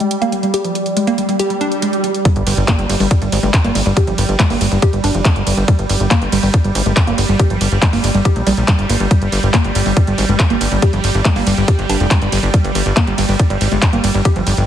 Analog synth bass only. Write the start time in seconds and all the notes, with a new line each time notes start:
2.36 G1
2.47 G1
2.57 G1
2.79 G1
2.89 G1
3.00 G1
3.22 G1
3.32 G#1
3.43 G1
3.65 G1
3.75 G1
3.86 G1
4.07 G1
4.18 G1
4.29 G1
4.50 G1
4.61 G1
4.72 G1
4.93 G1
5.04 G1
5.15 F1
5.36 G1
5.47 G1
5.57 G1
5.79 G1
5.90 G1
6.00 G1
6.22 G1
6.32 G1
6.43 G1
6.64 G1
6.75 G#1
6.86 G1
7.07 G1
7.18 G1
7.29 G1
7.50 G1
7.61 G1
7.72 G1
7.93 G1
8.04 G1
8.15 G1
8.36 A#1
8.47 A#1
8.57 A#1
8.79 G1
8.90 G1
9.00 G1
9.22 G1
9.32 G1
9.43 G1
9.65 G1
9.75 G1
9.86 G1
10.07 G1
10.18 G#1
10.29 G1
10.50 G1
10.61 G1
10.72 G1
10.93 G1
11.04 G1
11.15 G1
11.36 G1
11.47 G1
11.57 G1
11.79 G1
11.89 G1
12.00 F1
12.22 G1
12.32 G1
12.43 G1
12.64 G1
12.75 G1
12.86 G1
13.07 G1
13.18 G1
13.29 G1
13.50 G1
13.61 G#1
13.72 G1
13.93 G1
14.04 G1
14.15 G1
14.36 G1
14.47 G1
14.57 G1